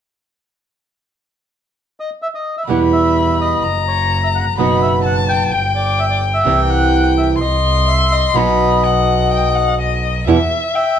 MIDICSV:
0, 0, Header, 1, 5, 480
1, 0, Start_track
1, 0, Key_signature, 1, "minor"
1, 0, Tempo, 472813
1, 810, Time_signature, 4, 2, 24, 8
1, 8481, Tempo, 480384
1, 11119, End_track
2, 0, Start_track
2, 0, Title_t, "Violin"
2, 0, Program_c, 0, 40
2, 2727, Note_on_c, 0, 83, 48
2, 3689, Note_on_c, 0, 82, 63
2, 3704, Note_off_c, 0, 83, 0
2, 4648, Note_off_c, 0, 82, 0
2, 4653, Note_on_c, 0, 83, 49
2, 5094, Note_off_c, 0, 83, 0
2, 5122, Note_on_c, 0, 81, 55
2, 5599, Note_on_c, 0, 79, 58
2, 5614, Note_off_c, 0, 81, 0
2, 6549, Note_off_c, 0, 79, 0
2, 6555, Note_on_c, 0, 79, 53
2, 7474, Note_off_c, 0, 79, 0
2, 7514, Note_on_c, 0, 84, 69
2, 8482, Note_on_c, 0, 83, 64
2, 8497, Note_off_c, 0, 84, 0
2, 8964, Note_on_c, 0, 78, 59
2, 8979, Note_off_c, 0, 83, 0
2, 9441, Note_on_c, 0, 79, 60
2, 9456, Note_off_c, 0, 78, 0
2, 9676, Note_on_c, 0, 78, 60
2, 9691, Note_off_c, 0, 79, 0
2, 9918, Note_off_c, 0, 78, 0
2, 9932, Note_on_c, 0, 75, 48
2, 10374, Note_off_c, 0, 75, 0
2, 10401, Note_on_c, 0, 76, 56
2, 10880, Note_on_c, 0, 79, 65
2, 10895, Note_off_c, 0, 76, 0
2, 11119, Note_off_c, 0, 79, 0
2, 11119, End_track
3, 0, Start_track
3, 0, Title_t, "Bandoneon"
3, 0, Program_c, 1, 23
3, 2029, Note_on_c, 1, 75, 54
3, 2132, Note_off_c, 1, 75, 0
3, 2256, Note_on_c, 1, 76, 57
3, 2308, Note_off_c, 1, 76, 0
3, 2384, Note_on_c, 1, 75, 43
3, 2597, Note_off_c, 1, 75, 0
3, 2615, Note_on_c, 1, 76, 44
3, 2667, Note_off_c, 1, 76, 0
3, 2731, Note_on_c, 1, 78, 56
3, 2838, Note_off_c, 1, 78, 0
3, 2972, Note_on_c, 1, 76, 52
3, 3418, Note_off_c, 1, 76, 0
3, 3462, Note_on_c, 1, 75, 58
3, 3902, Note_off_c, 1, 75, 0
3, 3938, Note_on_c, 1, 73, 60
3, 4269, Note_off_c, 1, 73, 0
3, 4301, Note_on_c, 1, 76, 55
3, 4352, Note_off_c, 1, 76, 0
3, 4417, Note_on_c, 1, 78, 58
3, 4523, Note_off_c, 1, 78, 0
3, 4659, Note_on_c, 1, 75, 61
3, 4876, Note_off_c, 1, 75, 0
3, 4892, Note_on_c, 1, 76, 58
3, 4997, Note_off_c, 1, 76, 0
3, 5134, Note_on_c, 1, 78, 65
3, 5239, Note_off_c, 1, 78, 0
3, 5367, Note_on_c, 1, 79, 67
3, 5809, Note_off_c, 1, 79, 0
3, 5840, Note_on_c, 1, 74, 61
3, 6085, Note_on_c, 1, 76, 57
3, 6086, Note_off_c, 1, 74, 0
3, 6137, Note_off_c, 1, 76, 0
3, 6195, Note_on_c, 1, 74, 55
3, 6303, Note_off_c, 1, 74, 0
3, 6435, Note_on_c, 1, 76, 64
3, 6704, Note_off_c, 1, 76, 0
3, 6726, Note_on_c, 1, 79, 43
3, 6796, Note_off_c, 1, 79, 0
3, 6797, Note_on_c, 1, 78, 71
3, 7242, Note_off_c, 1, 78, 0
3, 7287, Note_on_c, 1, 76, 52
3, 7392, Note_off_c, 1, 76, 0
3, 7522, Note_on_c, 1, 75, 57
3, 7994, Note_on_c, 1, 76, 58
3, 8014, Note_off_c, 1, 75, 0
3, 8240, Note_on_c, 1, 75, 64
3, 8244, Note_off_c, 1, 76, 0
3, 9880, Note_off_c, 1, 75, 0
3, 10875, Note_on_c, 1, 76, 71
3, 11099, Note_off_c, 1, 76, 0
3, 11119, End_track
4, 0, Start_track
4, 0, Title_t, "Nylon-string guitar"
4, 0, Program_c, 2, 24
4, 2714, Note_on_c, 2, 47, 46
4, 2726, Note_on_c, 2, 52, 48
4, 2731, Note_on_c, 2, 55, 51
4, 2741, Note_on_c, 2, 59, 49
4, 2747, Note_on_c, 2, 64, 49
4, 3673, Note_off_c, 2, 47, 0
4, 3679, Note_off_c, 2, 52, 0
4, 3682, Note_off_c, 2, 55, 0
4, 3687, Note_off_c, 2, 59, 0
4, 3690, Note_off_c, 2, 64, 0
4, 4643, Note_on_c, 2, 47, 51
4, 4650, Note_on_c, 2, 54, 51
4, 4662, Note_on_c, 2, 59, 54
4, 4665, Note_on_c, 2, 63, 50
4, 4675, Note_on_c, 2, 66, 53
4, 5589, Note_off_c, 2, 47, 0
4, 5593, Note_off_c, 2, 54, 0
4, 5599, Note_off_c, 2, 59, 0
4, 5600, Note_off_c, 2, 63, 0
4, 5605, Note_off_c, 2, 66, 0
4, 6543, Note_on_c, 2, 48, 48
4, 6555, Note_on_c, 2, 52, 50
4, 6561, Note_on_c, 2, 55, 52
4, 6569, Note_on_c, 2, 60, 59
4, 6577, Note_on_c, 2, 64, 56
4, 7498, Note_off_c, 2, 48, 0
4, 7504, Note_off_c, 2, 52, 0
4, 7507, Note_off_c, 2, 55, 0
4, 7512, Note_off_c, 2, 60, 0
4, 7516, Note_off_c, 2, 64, 0
4, 8463, Note_on_c, 2, 47, 51
4, 8474, Note_on_c, 2, 54, 62
4, 8482, Note_on_c, 2, 59, 47
4, 8490, Note_on_c, 2, 63, 55
4, 8494, Note_on_c, 2, 66, 59
4, 10383, Note_off_c, 2, 47, 0
4, 10389, Note_off_c, 2, 54, 0
4, 10393, Note_off_c, 2, 59, 0
4, 10396, Note_off_c, 2, 63, 0
4, 10398, Note_on_c, 2, 47, 62
4, 10399, Note_off_c, 2, 66, 0
4, 10400, Note_on_c, 2, 52, 54
4, 10404, Note_on_c, 2, 55, 56
4, 10407, Note_on_c, 2, 59, 53
4, 10408, Note_on_c, 2, 64, 70
4, 10490, Note_off_c, 2, 47, 0
4, 10491, Note_off_c, 2, 52, 0
4, 10493, Note_off_c, 2, 55, 0
4, 10494, Note_off_c, 2, 59, 0
4, 10495, Note_off_c, 2, 64, 0
4, 11119, End_track
5, 0, Start_track
5, 0, Title_t, "Double bass"
5, 0, Program_c, 3, 43
5, 2726, Note_on_c, 3, 40, 48
5, 3641, Note_off_c, 3, 40, 0
5, 3688, Note_on_c, 3, 30, 50
5, 4599, Note_off_c, 3, 30, 0
5, 4647, Note_on_c, 3, 30, 47
5, 5553, Note_off_c, 3, 30, 0
5, 5603, Note_on_c, 3, 31, 48
5, 6510, Note_off_c, 3, 31, 0
5, 6564, Note_on_c, 3, 36, 49
5, 7471, Note_off_c, 3, 36, 0
5, 7516, Note_on_c, 3, 36, 56
5, 8430, Note_off_c, 3, 36, 0
5, 8485, Note_on_c, 3, 35, 50
5, 10308, Note_off_c, 3, 35, 0
5, 10400, Note_on_c, 3, 40, 71
5, 10600, Note_off_c, 3, 40, 0
5, 11119, End_track
0, 0, End_of_file